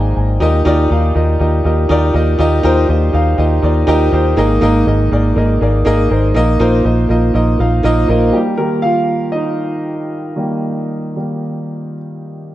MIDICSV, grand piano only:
0, 0, Header, 1, 2, 480
1, 0, Start_track
1, 0, Tempo, 495868
1, 397, Time_signature, 4, 2, 24, 8
1, 9037, Tempo, 517688
1, 10477, Tempo, 556586
1, 11908, End_track
2, 0, Start_track
2, 0, Title_t, "Grand piano"
2, 0, Program_c, 0, 0
2, 0, Control_c, 0, 64, 127
2, 0, Note_on_c, 0, 44, 74
2, 0, Note_on_c, 0, 51, 76
2, 0, Note_on_c, 0, 58, 80
2, 0, Note_on_c, 0, 63, 70
2, 0, Note_on_c, 0, 68, 77
2, 0, Note_on_c, 0, 70, 77
2, 0, Note_on_c, 0, 72, 127
2, 0, Note_on_c, 0, 74, 89
2, 0, Note_on_c, 0, 75, 97
2, 0, Note_on_c, 0, 77, 73
2, 0, Note_on_c, 0, 79, 72
2, 0, Note_on_c, 0, 80, 84
2, 0, Note_on_c, 0, 82, 70
2, 145, Note_off_c, 0, 80, 0
2, 146, Note_off_c, 0, 82, 0
2, 160, Note_on_c, 0, 80, 63
2, 389, Note_off_c, 0, 63, 0
2, 389, Note_on_c, 0, 63, 106
2, 395, Note_on_c, 0, 65, 93
2, 398, Note_on_c, 0, 46, 74
2, 398, Note_on_c, 0, 67, 90
2, 406, Note_off_c, 0, 70, 0
2, 406, Note_on_c, 0, 70, 101
2, 408, Note_off_c, 0, 72, 0
2, 408, Note_off_c, 0, 77, 0
2, 408, Control_c, 0, 64, 0
2, 409, Note_off_c, 0, 75, 0
2, 409, Note_on_c, 0, 75, 117
2, 412, Note_off_c, 0, 58, 0
2, 415, Note_off_c, 0, 79, 0
2, 416, Note_off_c, 0, 68, 0
2, 416, Note_off_c, 0, 74, 0
2, 417, Note_off_c, 0, 51, 0
2, 418, Note_off_c, 0, 44, 0
2, 571, Note_off_c, 0, 63, 0
2, 573, Note_off_c, 0, 65, 0
2, 575, Note_off_c, 0, 67, 0
2, 579, Note_off_c, 0, 70, 0
2, 581, Note_off_c, 0, 75, 0
2, 598, Control_c, 0, 64, 127
2, 614, Note_off_c, 0, 80, 0
2, 629, Note_on_c, 0, 63, 114
2, 635, Note_on_c, 0, 65, 107
2, 639, Note_on_c, 0, 67, 103
2, 644, Note_on_c, 0, 70, 104
2, 649, Note_on_c, 0, 74, 124
2, 811, Note_off_c, 0, 63, 0
2, 814, Note_off_c, 0, 65, 0
2, 816, Note_off_c, 0, 67, 0
2, 818, Note_off_c, 0, 70, 0
2, 820, Note_off_c, 0, 74, 0
2, 871, Note_on_c, 0, 63, 82
2, 875, Note_on_c, 0, 65, 73
2, 881, Note_on_c, 0, 67, 76
2, 885, Note_on_c, 0, 70, 65
2, 890, Note_on_c, 0, 77, 89
2, 1052, Note_off_c, 0, 63, 0
2, 1054, Note_off_c, 0, 65, 0
2, 1056, Note_off_c, 0, 67, 0
2, 1059, Note_off_c, 0, 70, 0
2, 1061, Note_off_c, 0, 77, 0
2, 1079, Note_off_c, 0, 46, 0
2, 1108, Note_on_c, 0, 63, 77
2, 1112, Note_on_c, 0, 65, 79
2, 1117, Note_on_c, 0, 67, 79
2, 1120, Note_on_c, 0, 70, 71
2, 1126, Note_on_c, 0, 75, 82
2, 1290, Note_off_c, 0, 63, 0
2, 1292, Note_off_c, 0, 65, 0
2, 1295, Note_off_c, 0, 67, 0
2, 1296, Note_off_c, 0, 70, 0
2, 1299, Note_off_c, 0, 75, 0
2, 1349, Note_on_c, 0, 63, 80
2, 1351, Note_on_c, 0, 65, 75
2, 1357, Note_on_c, 0, 67, 85
2, 1362, Note_on_c, 0, 70, 71
2, 1367, Note_on_c, 0, 75, 88
2, 1530, Note_off_c, 0, 63, 0
2, 1531, Note_off_c, 0, 65, 0
2, 1534, Note_off_c, 0, 67, 0
2, 1537, Note_off_c, 0, 70, 0
2, 1539, Note_off_c, 0, 75, 0
2, 1591, Note_on_c, 0, 63, 85
2, 1595, Note_on_c, 0, 65, 74
2, 1600, Note_on_c, 0, 67, 75
2, 1604, Note_on_c, 0, 70, 79
2, 1610, Note_on_c, 0, 75, 91
2, 1771, Note_off_c, 0, 63, 0
2, 1773, Note_off_c, 0, 65, 0
2, 1776, Note_off_c, 0, 67, 0
2, 1778, Note_off_c, 0, 70, 0
2, 1781, Note_off_c, 0, 75, 0
2, 1830, Note_on_c, 0, 63, 114
2, 1836, Note_on_c, 0, 65, 101
2, 1842, Note_on_c, 0, 67, 103
2, 1845, Note_on_c, 0, 70, 102
2, 1852, Note_on_c, 0, 74, 125
2, 2011, Note_off_c, 0, 63, 0
2, 2014, Note_off_c, 0, 65, 0
2, 2017, Note_off_c, 0, 67, 0
2, 2018, Note_off_c, 0, 70, 0
2, 2022, Note_off_c, 0, 74, 0
2, 2069, Note_on_c, 0, 63, 93
2, 2075, Note_on_c, 0, 65, 85
2, 2078, Note_on_c, 0, 67, 80
2, 2083, Note_on_c, 0, 70, 78
2, 2088, Note_on_c, 0, 75, 99
2, 2250, Note_off_c, 0, 63, 0
2, 2253, Note_off_c, 0, 65, 0
2, 2254, Note_off_c, 0, 67, 0
2, 2257, Note_off_c, 0, 70, 0
2, 2260, Note_off_c, 0, 75, 0
2, 2309, Note_on_c, 0, 63, 109
2, 2313, Note_on_c, 0, 65, 102
2, 2317, Note_on_c, 0, 46, 81
2, 2317, Note_on_c, 0, 67, 106
2, 2323, Note_on_c, 0, 70, 91
2, 2327, Note_on_c, 0, 75, 125
2, 2490, Note_off_c, 0, 63, 0
2, 2492, Note_off_c, 0, 65, 0
2, 2494, Note_off_c, 0, 67, 0
2, 2497, Note_off_c, 0, 70, 0
2, 2499, Note_off_c, 0, 75, 0
2, 2549, Note_on_c, 0, 63, 118
2, 2551, Note_on_c, 0, 65, 104
2, 2557, Note_on_c, 0, 67, 101
2, 2562, Note_on_c, 0, 70, 117
2, 2567, Note_on_c, 0, 72, 127
2, 2730, Note_off_c, 0, 63, 0
2, 2731, Note_off_c, 0, 65, 0
2, 2734, Note_off_c, 0, 67, 0
2, 2737, Note_off_c, 0, 70, 0
2, 2739, Note_off_c, 0, 72, 0
2, 2787, Note_on_c, 0, 63, 78
2, 2791, Note_on_c, 0, 65, 80
2, 2797, Note_on_c, 0, 67, 69
2, 2800, Note_on_c, 0, 70, 72
2, 2805, Note_on_c, 0, 75, 89
2, 2969, Note_off_c, 0, 63, 0
2, 2971, Note_off_c, 0, 65, 0
2, 2974, Note_off_c, 0, 67, 0
2, 2975, Note_off_c, 0, 70, 0
2, 2978, Note_off_c, 0, 75, 0
2, 2997, Note_off_c, 0, 46, 0
2, 3026, Note_on_c, 0, 63, 79
2, 3030, Note_on_c, 0, 65, 79
2, 3035, Note_on_c, 0, 67, 73
2, 3040, Note_on_c, 0, 70, 75
2, 3044, Note_on_c, 0, 77, 102
2, 3209, Note_off_c, 0, 63, 0
2, 3211, Note_off_c, 0, 65, 0
2, 3213, Note_off_c, 0, 67, 0
2, 3216, Note_off_c, 0, 70, 0
2, 3217, Note_off_c, 0, 77, 0
2, 3267, Note_on_c, 0, 63, 84
2, 3272, Note_on_c, 0, 65, 88
2, 3275, Note_on_c, 0, 67, 83
2, 3279, Note_on_c, 0, 70, 83
2, 3285, Note_on_c, 0, 75, 101
2, 3449, Note_off_c, 0, 63, 0
2, 3451, Note_off_c, 0, 65, 0
2, 3453, Note_off_c, 0, 67, 0
2, 3455, Note_off_c, 0, 70, 0
2, 3458, Note_off_c, 0, 75, 0
2, 3507, Note_on_c, 0, 63, 86
2, 3509, Note_on_c, 0, 65, 77
2, 3515, Note_on_c, 0, 67, 72
2, 3520, Note_on_c, 0, 70, 78
2, 3525, Note_on_c, 0, 74, 99
2, 3689, Note_off_c, 0, 63, 0
2, 3690, Note_off_c, 0, 65, 0
2, 3693, Note_off_c, 0, 67, 0
2, 3696, Note_off_c, 0, 70, 0
2, 3698, Note_off_c, 0, 74, 0
2, 3745, Note_on_c, 0, 63, 118
2, 3748, Note_on_c, 0, 65, 105
2, 3753, Note_on_c, 0, 67, 118
2, 3756, Note_on_c, 0, 70, 112
2, 3762, Note_on_c, 0, 75, 127
2, 3928, Note_off_c, 0, 63, 0
2, 3929, Note_off_c, 0, 65, 0
2, 3932, Note_off_c, 0, 67, 0
2, 3933, Note_off_c, 0, 70, 0
2, 3936, Note_off_c, 0, 75, 0
2, 3986, Note_on_c, 0, 63, 98
2, 3990, Note_on_c, 0, 65, 81
2, 3996, Note_on_c, 0, 67, 92
2, 4002, Note_on_c, 0, 70, 83
2, 4005, Note_on_c, 0, 72, 107
2, 4168, Note_off_c, 0, 63, 0
2, 4170, Note_off_c, 0, 65, 0
2, 4173, Note_off_c, 0, 67, 0
2, 4176, Note_off_c, 0, 70, 0
2, 4178, Note_off_c, 0, 72, 0
2, 4226, Note_on_c, 0, 58, 113
2, 4231, Note_on_c, 0, 63, 107
2, 4233, Note_on_c, 0, 68, 102
2, 4234, Note_on_c, 0, 44, 73
2, 4235, Note_on_c, 0, 51, 74
2, 4240, Note_on_c, 0, 70, 104
2, 4245, Note_on_c, 0, 75, 127
2, 4248, Control_c, 0, 64, 0
2, 4392, Control_c, 0, 64, 127
2, 4408, Note_off_c, 0, 58, 0
2, 4411, Note_off_c, 0, 63, 0
2, 4412, Note_off_c, 0, 68, 0
2, 4415, Note_off_c, 0, 70, 0
2, 4418, Note_off_c, 0, 75, 0
2, 4463, Note_on_c, 0, 58, 121
2, 4469, Note_on_c, 0, 63, 114
2, 4473, Note_on_c, 0, 68, 101
2, 4478, Note_on_c, 0, 70, 107
2, 4482, Note_on_c, 0, 75, 127
2, 4647, Note_off_c, 0, 58, 0
2, 4649, Note_off_c, 0, 63, 0
2, 4652, Note_off_c, 0, 68, 0
2, 4654, Note_off_c, 0, 70, 0
2, 4656, Note_off_c, 0, 75, 0
2, 4705, Note_on_c, 0, 58, 80
2, 4711, Note_on_c, 0, 63, 77
2, 4715, Note_on_c, 0, 68, 73
2, 4720, Note_on_c, 0, 70, 73
2, 4724, Note_on_c, 0, 75, 95
2, 4888, Note_off_c, 0, 58, 0
2, 4891, Note_off_c, 0, 63, 0
2, 4893, Note_off_c, 0, 68, 0
2, 4895, Note_off_c, 0, 70, 0
2, 4897, Note_off_c, 0, 75, 0
2, 4916, Note_off_c, 0, 44, 0
2, 4916, Note_off_c, 0, 51, 0
2, 4946, Note_on_c, 0, 58, 92
2, 4952, Note_on_c, 0, 63, 75
2, 4957, Note_on_c, 0, 68, 81
2, 4960, Note_on_c, 0, 70, 79
2, 4966, Note_on_c, 0, 74, 105
2, 5128, Note_off_c, 0, 58, 0
2, 5131, Note_off_c, 0, 63, 0
2, 5134, Note_off_c, 0, 68, 0
2, 5135, Note_off_c, 0, 70, 0
2, 5138, Note_off_c, 0, 74, 0
2, 5187, Note_on_c, 0, 58, 91
2, 5191, Note_on_c, 0, 63, 78
2, 5196, Note_on_c, 0, 68, 75
2, 5201, Note_on_c, 0, 70, 81
2, 5206, Note_on_c, 0, 75, 89
2, 5368, Note_off_c, 0, 58, 0
2, 5370, Note_off_c, 0, 63, 0
2, 5373, Note_off_c, 0, 68, 0
2, 5376, Note_off_c, 0, 70, 0
2, 5378, Note_off_c, 0, 75, 0
2, 5427, Note_on_c, 0, 58, 83
2, 5432, Note_on_c, 0, 63, 79
2, 5435, Note_on_c, 0, 68, 83
2, 5440, Note_on_c, 0, 70, 80
2, 5445, Note_on_c, 0, 74, 97
2, 5608, Note_off_c, 0, 58, 0
2, 5611, Note_off_c, 0, 63, 0
2, 5612, Note_off_c, 0, 68, 0
2, 5615, Note_off_c, 0, 70, 0
2, 5617, Note_off_c, 0, 74, 0
2, 5661, Note_on_c, 0, 58, 124
2, 5668, Note_on_c, 0, 63, 101
2, 5672, Note_on_c, 0, 68, 111
2, 5675, Note_on_c, 0, 70, 104
2, 5679, Note_on_c, 0, 75, 127
2, 5846, Note_off_c, 0, 58, 0
2, 5849, Note_off_c, 0, 63, 0
2, 5851, Note_off_c, 0, 68, 0
2, 5852, Note_off_c, 0, 70, 0
2, 5854, Note_off_c, 0, 75, 0
2, 5900, Note_on_c, 0, 58, 90
2, 5906, Note_on_c, 0, 63, 81
2, 5908, Note_on_c, 0, 68, 82
2, 5916, Note_on_c, 0, 70, 89
2, 5918, Note_on_c, 0, 72, 94
2, 6085, Note_off_c, 0, 58, 0
2, 6088, Note_off_c, 0, 63, 0
2, 6089, Note_off_c, 0, 68, 0
2, 6093, Note_off_c, 0, 70, 0
2, 6094, Note_off_c, 0, 72, 0
2, 6141, Note_on_c, 0, 58, 111
2, 6145, Note_on_c, 0, 63, 94
2, 6151, Note_on_c, 0, 53, 72
2, 6151, Note_on_c, 0, 65, 94
2, 6152, Note_on_c, 0, 46, 72
2, 6155, Note_on_c, 0, 70, 100
2, 6161, Note_on_c, 0, 75, 127
2, 6168, Control_c, 0, 64, 0
2, 6314, Control_c, 0, 64, 127
2, 6325, Note_off_c, 0, 58, 0
2, 6327, Note_off_c, 0, 63, 0
2, 6330, Note_off_c, 0, 65, 0
2, 6332, Note_off_c, 0, 70, 0
2, 6335, Note_off_c, 0, 75, 0
2, 6382, Note_on_c, 0, 58, 115
2, 6386, Note_on_c, 0, 63, 114
2, 6389, Note_on_c, 0, 65, 100
2, 6394, Note_on_c, 0, 70, 107
2, 6400, Note_on_c, 0, 72, 123
2, 6566, Note_off_c, 0, 58, 0
2, 6568, Note_off_c, 0, 63, 0
2, 6569, Note_off_c, 0, 65, 0
2, 6572, Note_off_c, 0, 70, 0
2, 6575, Note_off_c, 0, 72, 0
2, 6618, Note_on_c, 0, 58, 75
2, 6624, Note_on_c, 0, 63, 76
2, 6628, Note_on_c, 0, 65, 81
2, 6634, Note_on_c, 0, 70, 73
2, 6638, Note_on_c, 0, 75, 91
2, 6804, Note_off_c, 0, 58, 0
2, 6806, Note_off_c, 0, 63, 0
2, 6809, Note_off_c, 0, 65, 0
2, 6812, Note_off_c, 0, 70, 0
2, 6814, Note_off_c, 0, 75, 0
2, 6833, Note_off_c, 0, 53, 0
2, 6834, Note_off_c, 0, 46, 0
2, 6860, Note_on_c, 0, 58, 87
2, 6864, Note_on_c, 0, 63, 75
2, 6870, Note_on_c, 0, 65, 83
2, 6874, Note_on_c, 0, 70, 78
2, 6879, Note_on_c, 0, 75, 101
2, 7044, Note_off_c, 0, 58, 0
2, 7047, Note_off_c, 0, 63, 0
2, 7050, Note_off_c, 0, 65, 0
2, 7052, Note_off_c, 0, 70, 0
2, 7054, Note_off_c, 0, 75, 0
2, 7101, Note_on_c, 0, 58, 89
2, 7104, Note_on_c, 0, 63, 76
2, 7110, Note_on_c, 0, 65, 78
2, 7114, Note_on_c, 0, 70, 82
2, 7118, Note_on_c, 0, 75, 103
2, 7285, Note_off_c, 0, 58, 0
2, 7287, Note_off_c, 0, 63, 0
2, 7290, Note_off_c, 0, 65, 0
2, 7291, Note_off_c, 0, 70, 0
2, 7294, Note_off_c, 0, 75, 0
2, 7343, Note_on_c, 0, 58, 79
2, 7348, Note_on_c, 0, 63, 81
2, 7354, Note_on_c, 0, 65, 77
2, 7356, Note_on_c, 0, 70, 74
2, 7361, Note_on_c, 0, 77, 100
2, 7526, Note_off_c, 0, 58, 0
2, 7529, Note_off_c, 0, 63, 0
2, 7532, Note_off_c, 0, 65, 0
2, 7533, Note_off_c, 0, 70, 0
2, 7535, Note_off_c, 0, 77, 0
2, 7582, Note_on_c, 0, 58, 116
2, 7588, Note_on_c, 0, 63, 103
2, 7591, Note_on_c, 0, 65, 106
2, 7595, Note_on_c, 0, 70, 103
2, 7602, Note_on_c, 0, 75, 127
2, 7765, Note_off_c, 0, 58, 0
2, 7768, Note_off_c, 0, 63, 0
2, 7770, Note_off_c, 0, 65, 0
2, 7772, Note_off_c, 0, 70, 0
2, 7776, Note_off_c, 0, 75, 0
2, 7824, Note_on_c, 0, 58, 92
2, 7829, Note_on_c, 0, 63, 87
2, 7833, Note_on_c, 0, 65, 75
2, 7838, Note_on_c, 0, 70, 85
2, 7843, Note_on_c, 0, 75, 96
2, 8006, Note_off_c, 0, 58, 0
2, 8009, Note_off_c, 0, 63, 0
2, 8011, Note_off_c, 0, 65, 0
2, 8013, Note_off_c, 0, 70, 0
2, 8016, Note_off_c, 0, 75, 0
2, 8061, Note_on_c, 0, 67, 77
2, 8082, Note_on_c, 0, 55, 65
2, 8086, Control_c, 0, 64, 0
2, 8243, Control_c, 0, 64, 127
2, 8300, Note_on_c, 0, 70, 82
2, 8302, Note_off_c, 0, 55, 0
2, 8312, Note_on_c, 0, 51, 52
2, 8315, Note_off_c, 0, 67, 0
2, 8319, Note_on_c, 0, 55, 46
2, 8323, Note_on_c, 0, 58, 58
2, 8540, Note_on_c, 0, 77, 90
2, 8545, Note_off_c, 0, 58, 0
2, 8556, Note_off_c, 0, 70, 0
2, 8568, Note_on_c, 0, 65, 66
2, 8998, Note_off_c, 0, 77, 0
2, 9003, Note_off_c, 0, 51, 0
2, 9006, Note_off_c, 0, 55, 0
2, 9013, Note_off_c, 0, 65, 0
2, 9021, Note_on_c, 0, 75, 79
2, 9053, Note_on_c, 0, 63, 57
2, 9987, Note_on_c, 0, 51, 42
2, 9992, Note_on_c, 0, 55, 44
2, 9996, Note_on_c, 0, 58, 53
2, 10699, Note_off_c, 0, 51, 0
2, 10702, Note_off_c, 0, 55, 0
2, 10706, Note_off_c, 0, 58, 0
2, 10712, Note_on_c, 0, 51, 38
2, 10715, Note_on_c, 0, 55, 34
2, 10719, Note_on_c, 0, 58, 41
2, 10923, Note_off_c, 0, 51, 0
2, 10925, Note_off_c, 0, 55, 0
2, 10927, Note_off_c, 0, 58, 0
2, 11383, Note_off_c, 0, 75, 0
2, 11397, Note_off_c, 0, 63, 0
2, 11908, End_track
0, 0, End_of_file